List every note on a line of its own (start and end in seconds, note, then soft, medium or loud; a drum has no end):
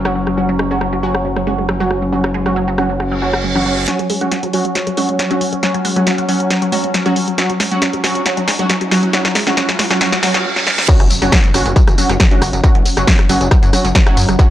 0.00 3.86 F#1 medium
0.00 3.86 F#3 medium
0.00 3.87 C#4 medium
0.05 0.10 F#3 loud
0.05 0.15 F#3 medium
0.05 0.15 C#4 medium
0.05 0.15 F#4 loud
0.05 cross-stick medium
0.15 0.21 F#3 medium
0.27 0.30 F#3 medium
0.27 cross-stick medium
0.37 0.43 F#3 medium
0.37 0.48 F#3 medium
0.37 0.48 C#4 medium
0.37 0.48 F#4 medium
0.49 0.56 F#3 loud
0.59 0.68 G#3 loud
0.59 cross-stick medium
0.71 0.87 F#3 medium
0.71 0.76 G#3 medium
0.71 0.87 C#4 medium
0.71 0.87 F#4 medium
0.81 0.87 F#3 loud
0.81 cross-stick medium
0.93 0.98 F#3 loud
1.03 1.09 F#3 medium
1.03 1.20 F#3 loud
1.03 1.20 C#4 medium
1.03 1.20 F#4 loud
1.15 1.18 F#3 medium
1.15 cross-stick medium
1.25 1.30 F#3 medium
1.36 1.44 F#3 loud
1.36 cross-stick medium
1.47 1.64 F#3 medium
1.47 1.55 G#3 loud
1.47 1.64 C#4 medium
1.47 1.64 F#4 medium
1.58 1.63 G#3 medium
1.69 1.74 F#3 loud
1.69 cross-stick medium
1.80 1.85 F#3 loud
1.80 1.90 F#3 medium
1.80 1.90 C#4 medium
1.80 1.90 F#4 loud
1.91 1.96 F#3 medium
1.91 cross-stick medium
2.02 2.05 F#3 medium
2.13 2.18 F#3 medium
2.13 2.23 F#3 medium
2.13 2.23 C#4 medium
2.13 2.23 F#4 medium
2.24 2.32 F#3 loud
2.24 cross-stick medium
2.34 2.43 G#3 loud
2.46 2.62 F#3 medium
2.46 2.51 G#3 medium
2.46 2.62 C#4 medium
2.46 2.62 F#4 loud
2.46 cross-stick medium
2.56 2.62 F#3 loud
2.68 2.73 F#3 loud
2.78 2.84 F#3 medium
2.78 2.95 F#3 medium
2.78 2.95 C#4 medium
2.78 2.95 F#4 loud
2.78 cross-stick medium
2.90 2.93 F#3 medium
3.00 3.06 F#3 medium
3.00 cross-stick medium
3.00 reverse cymbal medium
3.12 3.19 F#3 loud
3.22 3.28 F#3 medium
3.22 3.33 F#3 medium
3.22 3.33 C#4 medium
3.22 3.33 F#4 loud
3.34 3.41 F#4 medium
3.34 cross-stick medium
3.44 3.50 F#3 medium
3.55 3.60 E3 loud
3.55 3.64 F#3 medium
3.55 3.64 C#4 medium
3.55 3.64 F#4 loud
3.55 cross-stick medium
3.66 3.71 F#3 medium
3.66 3.77 F#3 medium
3.66 3.77 C#4 medium
3.66 3.77 F#4 loud
3.77 3.80 F#3 medium
3.88 10.45 F#3 medium
3.88 3.99 F#3 medium
3.88 3.93 F#3 medium
3.88 10.45 C#4 medium
3.88 3.99 C#4 medium
3.88 3.99 F#4 medium
3.88 snare soft
3.88 closed hi-hat medium
3.88 riser medium
3.99 4.07 F#3 loud
3.99 closed hi-hat medium
4.10 4.18 G#3 loud
4.10 open hi-hat loud
4.21 4.37 F#3 medium
4.21 4.26 G#3 medium
4.21 4.37 C#4 medium
4.21 4.37 F#4 loud
4.21 closed hi-hat medium
4.32 4.37 F#3 loud
4.32 snare medium
4.32 closed hi-hat loud
4.43 4.48 F#3 loud
4.43 closed hi-hat medium
4.53 4.59 F#3 medium
4.53 4.70 F#3 medium
4.53 4.70 C#4 medium
4.53 4.70 F#4 loud
4.53 open hi-hat loud
4.65 4.68 F#3 medium
4.65 closed hi-hat medium
4.75 4.81 F#3 medium
4.75 snare medium
4.75 closed hi-hat loud
4.87 4.94 F#3 loud
4.87 closed hi-hat medium
4.97 5.14 F#3 medium
4.97 5.06 G#3 loud
4.97 5.14 C#4 medium
4.97 5.14 F#4 medium
4.97 open hi-hat loud
5.09 5.14 G#3 medium
5.09 closed hi-hat medium
5.19 5.25 F#3 loud
5.19 snare medium
5.19 closed hi-hat loud
5.31 5.36 F#3 loud
5.31 5.40 F#3 medium
5.31 5.40 C#4 medium
5.31 5.40 F#4 loud
5.31 closed hi-hat medium
5.41 5.47 F#3 medium
5.41 open hi-hat loud
5.52 5.55 F#3 medium
5.52 closed hi-hat medium
5.63 5.68 F#3 medium
5.63 5.74 F#3 medium
5.63 5.74 C#4 medium
5.63 5.74 F#4 medium
5.63 snare medium
5.63 closed hi-hat loud
5.74 5.82 F#3 loud
5.74 closed hi-hat medium
5.85 5.93 G#3 loud
5.85 open hi-hat loud
5.96 6.12 F#3 medium
5.96 6.01 G#3 medium
5.96 6.12 C#4 medium
5.96 6.12 F#4 loud
5.96 closed hi-hat medium
6.07 6.12 F#3 loud
6.07 snare medium
6.07 closed hi-hat loud
6.18 6.23 F#3 loud
6.18 closed hi-hat medium
6.28 6.34 F#3 medium
6.28 6.45 F#3 medium
6.28 6.45 C#4 medium
6.28 6.45 F#4 loud
6.28 open hi-hat loud
6.40 6.43 F#3 medium
6.40 closed hi-hat medium
6.50 6.56 F#3 medium
6.50 snare medium
6.50 closed hi-hat medium
6.62 6.69 F#3 loud
6.62 closed hi-hat medium
6.72 6.89 F#3 medium
6.72 6.81 G#3 loud
6.72 6.89 C#4 medium
6.72 6.89 F#4 medium
6.72 open hi-hat loud
6.84 6.89 G#3 medium
6.84 closed hi-hat medium
6.94 7.00 F#3 loud
6.94 snare medium
6.94 closed hi-hat loud
7.06 7.11 F#3 loud
7.06 7.16 F#3 medium
7.06 7.16 C#4 medium
7.06 7.16 F#4 loud
7.06 closed hi-hat medium
7.16 7.22 F#3 medium
7.16 open hi-hat loud
7.28 7.31 F#3 medium
7.28 closed hi-hat medium
7.38 7.49 F#3 medium
7.38 7.44 F#3 medium
7.38 7.49 C#4 medium
7.38 7.49 F#4 medium
7.38 snare medium
7.38 closed hi-hat medium
7.50 7.57 F#3 medium
7.50 closed hi-hat medium
7.60 7.68 G#3 loud
7.60 snare medium
7.60 open hi-hat loud
7.72 7.88 F#3 medium
7.72 7.77 G#3 medium
7.72 7.88 C#4 medium
7.72 7.88 F#4 medium
7.72 closed hi-hat medium
7.82 7.87 F#3 medium
7.82 snare medium
7.82 closed hi-hat loud
7.93 7.98 F#3 medium
7.93 closed hi-hat medium
8.04 8.21 F#3 medium
8.04 8.09 F#3 medium
8.04 8.21 C#4 medium
8.04 8.21 F#4 loud
8.04 snare medium
8.04 open hi-hat loud
8.15 8.18 F#3 medium
8.15 closed hi-hat medium
8.26 8.31 F#3 medium
8.26 8.37 F#3 medium
8.26 8.37 C#4 medium
8.26 8.37 F#4 medium
8.26 snare medium
8.26 closed hi-hat loud
8.37 8.45 F#3 loud
8.37 closed hi-hat medium
8.48 8.56 G#3 loud
8.48 snare medium
8.48 open hi-hat loud
8.59 8.75 F#3 medium
8.59 8.64 G#3 medium
8.59 8.75 C#4 medium
8.59 8.75 F#4 medium
8.59 closed hi-hat medium
8.69 8.75 F#3 loud
8.69 snare medium
8.69 closed hi-hat loud
8.81 8.86 F#3 loud
8.81 closed hi-hat medium
8.91 8.97 F#3 medium
8.91 9.08 F#3 medium
8.91 9.08 C#4 medium
8.91 9.08 F#4 loud
8.91 snare medium
8.91 open hi-hat loud
9.03 9.06 F#3 medium
9.03 closed hi-hat medium
9.13 9.19 F#3 medium
9.13 9.24 F#3 medium
9.13 9.24 C#4 medium
9.13 9.24 F#4 medium
9.13 snare medium
9.13 closed hi-hat medium
9.25 9.32 F#3 loud
9.25 snare medium
9.25 closed hi-hat medium
9.35 9.44 G#3 loud
9.35 snare medium
9.35 open hi-hat loud
9.47 9.55 F#3 medium
9.47 9.52 G#3 medium
9.47 9.55 C#4 medium
9.47 9.55 F#4 loud
9.47 snare medium
9.47 closed hi-hat medium
9.57 9.63 F#3 medium
9.57 9.68 F#3 medium
9.57 9.68 C#4 medium
9.57 9.68 F#4 medium
9.57 snare loud
9.57 closed hi-hat loud
9.69 9.76 F#3 loud
9.69 snare medium
9.69 closed hi-hat medium
9.79 9.87 G#3 loud
9.79 snare loud
9.79 open hi-hat loud
9.90 9.99 F#3 medium
9.90 9.95 G#3 medium
9.90 9.99 C#4 medium
9.90 9.99 F#4 medium
9.90 snare medium
9.90 closed hi-hat medium
10.01 10.06 F#3 medium
10.01 10.12 F#3 medium
10.01 10.12 C#4 medium
10.01 10.12 F#4 medium
10.01 snare loud
10.01 closed hi-hat medium
10.01 reverse cymbal medium
10.12 10.20 F#3 loud
10.12 snare loud
10.12 closed hi-hat medium
10.23 10.34 F#3 medium
10.23 10.28 F#3 medium
10.23 10.34 C#4 medium
10.23 10.34 F#4 medium
10.23 snare loud
10.23 open hi-hat loud
10.34 10.42 F#3 loud
10.34 snare medium
10.34 closed hi-hat medium
10.56 snare medium
10.67 snare medium
10.78 snare medium
10.88 10.99 F#3 medium
10.88 14.50 F#3 medium
10.88 10.94 F#3 loud
10.88 10.99 C#4 medium
10.88 14.50 C#4 medium
10.88 10.99 F#4 medium
10.88 kick loud
10.88 closed hi-hat loud
10.88 crash loud
10.88 tambourine soft
10.88 impact medium
11.00 11.08 F#1 medium
11.00 11.05 E3 medium
11.00 cross-stick medium
11.00 closed hi-hat medium
11.10 11.14 F#3 medium
11.10 open hi-hat loud
11.10 tambourine medium
11.22 11.30 F#1 medium
11.22 11.29 F#3 loud
11.22 11.38 F#3 medium
11.22 11.38 C#4 medium
11.22 11.38 F#4 loud
11.22 closed hi-hat medium
11.22 tambourine soft
11.32 11.38 G#3 medium
11.32 kick loud
11.32 cross-stick medium
11.32 snare loud
11.32 closed hi-hat loud
11.32 tambourine soft
11.44 11.51 E3 medium
11.44 closed hi-hat medium
11.54 11.63 F#1 loud
11.54 11.60 F#3 medium
11.54 11.71 F#3 loud
11.54 11.71 C#4 medium
11.54 11.71 F#4 loud
11.54 cross-stick medium
11.54 open hi-hat loud
11.54 tambourine medium
11.66 11.73 F#1 medium
11.66 11.73 F#3 medium
11.66 closed hi-hat medium
11.66 tambourine soft
11.76 11.82 F#3 loud
11.76 kick loud
11.76 closed hi-hat loud
11.76 tambourine soft
11.88 11.95 F#1 medium
11.88 11.93 E3 medium
11.88 cross-stick medium
11.88 closed hi-hat medium
11.88 tambourine soft
11.98 12.01 F#3 medium
11.98 12.15 F#3 medium
11.98 12.15 C#4 medium
11.98 12.15 F#4 medium
11.98 open hi-hat loud
11.98 tambourine medium
12.09 12.17 F#1 medium
12.09 12.17 F#3 loud
12.09 cross-stick medium
12.09 closed hi-hat medium
12.09 tambourine soft
12.20 12.25 G#3 medium
12.20 kick loud
12.20 snare loud
12.20 closed hi-hat loud
12.20 tambourine soft
12.31 12.39 E3 medium
12.31 12.41 F#3 medium
12.31 12.41 C#4 medium
12.31 12.41 F#4 loud
12.31 closed hi-hat medium
12.42 12.50 F#1 loud
12.42 12.47 F#3 medium
12.42 cross-stick medium
12.42 open hi-hat loud
12.42 tambourine medium
12.53 12.61 F#1 medium
12.53 12.61 F#3 medium
12.53 closed hi-hat medium
12.53 tambourine soft
12.64 12.69 F#3 loud
12.64 12.74 F#3 medium
12.64 12.74 C#4 medium
12.64 12.74 F#4 medium
12.64 kick loud
12.64 cross-stick medium
12.64 closed hi-hat loud
12.64 tambourine soft
12.75 12.83 F#1 medium
12.75 12.80 E3 medium
12.75 closed hi-hat medium
12.85 12.89 F#3 medium
12.85 open hi-hat loud
12.85 tambourine medium
12.97 13.05 F#1 medium
12.97 13.05 F#3 loud
12.97 13.13 F#3 medium
12.97 13.13 C#4 medium
12.97 13.13 F#4 loud
12.97 cross-stick medium
12.97 closed hi-hat medium
12.97 tambourine soft
13.07 13.13 G#3 medium
13.07 kick loud
13.07 snare loud
13.07 closed hi-hat loud
13.07 tambourine soft
13.19 13.26 E3 medium
13.19 cross-stick medium
13.19 closed hi-hat medium
13.29 13.38 F#1 loud
13.29 13.46 F#3 loud
13.29 13.35 F#3 medium
13.29 13.46 C#4 medium
13.29 13.46 F#4 loud
13.29 open hi-hat loud
13.29 tambourine medium
13.41 13.49 F#1 medium
13.41 13.48 F#3 medium
13.41 closed hi-hat medium
13.41 tambourine soft
13.51 13.57 F#3 loud
13.51 kick loud
13.51 cross-stick medium
13.51 closed hi-hat loud
13.51 tambourine soft
13.63 13.70 F#2 medium
13.63 13.68 E3 medium
13.63 closed hi-hat medium
13.63 tambourine soft
13.73 13.90 F#3 medium
13.73 13.77 F#3 medium
13.73 13.90 C#4 medium
13.73 13.90 F#4 medium
13.73 cross-stick medium
13.73 open hi-hat loud
13.73 tambourine medium
13.85 13.92 F#1 medium
13.85 13.92 F#3 loud
13.85 closed hi-hat medium
13.85 tambourine soft
13.95 14.01 G#3 medium
13.95 kick loud
13.95 snare loud
13.95 closed hi-hat loud
13.95 tambourine soft
14.07 14.14 E3 medium
14.07 14.16 F#3 medium
14.07 14.16 C#4 medium
14.07 14.16 F#4 loud
14.07 cross-stick medium
14.07 closed hi-hat medium
14.17 14.26 F#2 loud
14.17 14.23 F#3 medium
14.17 open hi-hat loud
14.17 tambourine medium
14.28 14.36 F#1 medium
14.28 14.36 F#3 medium
14.28 cross-stick medium
14.28 closed hi-hat medium
14.28 tambourine soft
14.39 14.50 F#3 medium
14.39 14.44 F#3 loud
14.39 14.50 C#4 medium
14.39 14.50 F#4 medium
14.39 kick loud
14.39 closed hi-hat loud
14.39 tambourine soft